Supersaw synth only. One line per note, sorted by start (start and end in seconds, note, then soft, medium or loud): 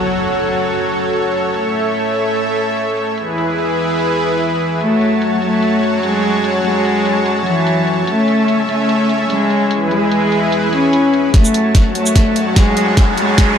0.00 1.51 F#3 medium
0.00 1.51 F#4 medium
0.00 3.14 A4 medium
0.00 3.14 C#5 medium
1.54 3.16 A3 medium
1.54 3.16 E5 medium
3.18 4.79 E3 medium
3.18 4.79 E4 medium
3.18 4.79 G#4 medium
3.18 4.79 B4 medium
4.81 8.04 F#3 medium
4.81 8.04 F#4 medium
4.81 9.67 C#5 medium
4.81 9.67 A5 medium
8.07 9.69 C#4 medium
8.07 9.69 E5 medium
9.71 11.32 E3 medium
9.71 11.32 E4 medium
9.71 11.32 G#4 medium
9.71 11.32 B4 medium
11.34 13.58 F#3 medium
11.34 13.58 F#4 medium
11.34 13.58 C#5 medium
11.34 13.58 A5 medium